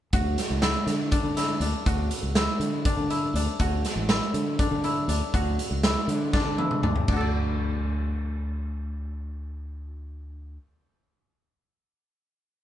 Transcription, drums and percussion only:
0.13 kick, closed hi-hat
0.38 snare, closed hi-hat
0.62 snare, closed hi-hat
0.88 snare, closed hi-hat
1.12 kick, closed hi-hat
1.37 snare, closed hi-hat
1.61 closed hi-hat
1.86 kick, closed hi-hat
2.11 closed hi-hat
2.35 snare, closed hi-hat
2.61 closed hi-hat
2.85 kick, closed hi-hat
3.10 closed hi-hat
3.36 closed hi-hat
3.59 kick, closed hi-hat
3.85 snare, closed hi-hat
4.09 snare, closed hi-hat
4.34 closed hi-hat
4.59 kick, closed hi-hat
4.84 closed hi-hat
5.09 closed hi-hat
5.34 kick, closed hi-hat
5.59 closed hi-hat
5.83 snare, closed hi-hat
6.09 closed hi-hat
6.33 kick, snare
6.59 high tom
6.71 mid tom
6.83 mid tom
6.96 floor tom
7.08 kick, crash

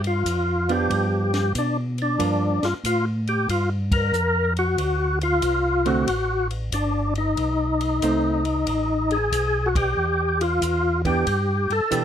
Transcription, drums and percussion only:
0.04 ride
0.26 kick, hi-hat pedal, ride
0.69 ride
0.90 kick, ride
1.34 snare, ride
1.55 kick, hi-hat pedal, ride
1.98 ride
2.19 kick, ride
2.63 snare, ride
2.84 kick, hi-hat pedal, ride
3.27 ride
3.49 kick, ride
3.92 kick, ride
4.14 hi-hat pedal
4.57 ride
4.78 kick, ride
5.21 ride
5.42 kick, hi-hat pedal, ride
5.86 ride
6.07 kick, ride
6.51 ride
6.72 kick, hi-hat pedal, ride
7.15 ride
7.37 kick, ride
7.81 ride
8.02 kick, hi-hat pedal, ride
8.45 ride
8.67 kick, ride
9.11 ride
9.32 kick, hi-hat pedal, ride
9.75 kick, ride
10.41 ride
10.62 kick, hi-hat pedal, ride
11.05 kick, ride
11.27 kick, ride
11.70 ride
11.92 kick, hi-hat pedal, ride

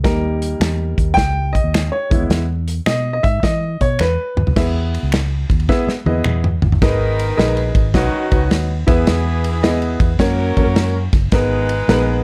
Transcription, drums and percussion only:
0.04 kick, snare, closed hi-hat
0.42 closed hi-hat
0.61 finger snap, snare, closed hi-hat
0.98 kick, closed hi-hat
1.17 kick, snare, closed hi-hat
1.55 kick, closed hi-hat
1.74 finger snap, snare, closed hi-hat
2.11 kick, closed hi-hat
2.30 snare, closed hi-hat
2.68 closed hi-hat
2.86 finger snap, snare, closed hi-hat
3.24 kick, closed hi-hat
3.43 kick, snare, closed hi-hat
3.81 kick, closed hi-hat
3.99 finger snap, snare
4.37 mid tom
4.47 floor tom
4.56 kick, snare, crash
4.94 ride
5.12 finger snap, snare, ride
5.50 kick, ride
5.60 ride
5.69 kick, snare
5.89 snare
6.06 high tom
6.24 finger snap, mid tom
6.44 mid tom
6.62 floor tom
6.72 floor tom
6.82 kick, snare, ride
7.19 ride
7.39 snare, ride
7.57 ride
7.75 kick, ride
7.94 kick, snare, ride
8.32 kick, ride
8.51 snare, ride
8.88 kick, snare, ride
9.07 snare, ride
9.44 ride
9.64 snare, ride
9.82 ride
10.00 kick, ride
10.19 kick, snare, ride
10.57 kick, ride
10.76 snare, ride
11.13 kick, snare, ride
11.32 kick, snare, ride
11.69 ride
11.89 snare, ride

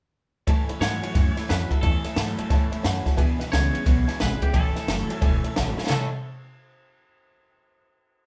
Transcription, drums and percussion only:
0.47 kick, ride
0.69 ride
0.82 snare, ride
1.03 ride
1.15 kick, snare, ride
1.37 snare, ride
1.50 snare, ride
1.71 kick, ride
1.83 kick, ride
2.04 snare, ride
2.16 snare, ride
2.38 ride
2.50 kick, snare, ride
2.72 ride
2.84 snare, ride
3.06 kick, snare, ride
3.18 kick, ride
3.41 snare, ride
3.53 snare, ride
3.75 ride
3.86 kick, snare, ride
4.09 snare, ride
4.20 snare, ride
4.42 kick, ride
4.54 kick, ride
4.76 snare, ride
4.88 snare, ride
5.10 ride
5.22 kick, ride
5.44 ride
5.56 snare, ride
5.78 snare
5.87 snare
5.90 snare, floor tom, splash

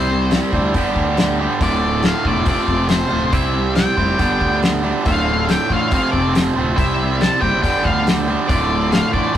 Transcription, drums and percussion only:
0.31 snare, open hi-hat
0.53 kick
0.74 kick, open hi-hat
0.96 kick
1.17 snare, open hi-hat
1.61 kick, open hi-hat
2.03 snare, open hi-hat
2.25 kick
2.46 kick, open hi-hat
2.68 kick
2.89 snare, open hi-hat
3.33 kick, open hi-hat
3.75 snare, open hi-hat
3.98 kick
4.19 kick, open hi-hat
4.41 kick
4.63 snare, open hi-hat
5.05 kick, open hi-hat
5.49 snare, open hi-hat
5.70 kick
5.91 kick, open hi-hat
6.13 kick
6.35 snare, open hi-hat
6.78 kick, open hi-hat
7.21 snare, open hi-hat
7.42 kick
7.64 kick, open hi-hat
7.85 kick
8.07 snare, open hi-hat
8.49 kick, open hi-hat
8.92 snare, open hi-hat
9.14 kick

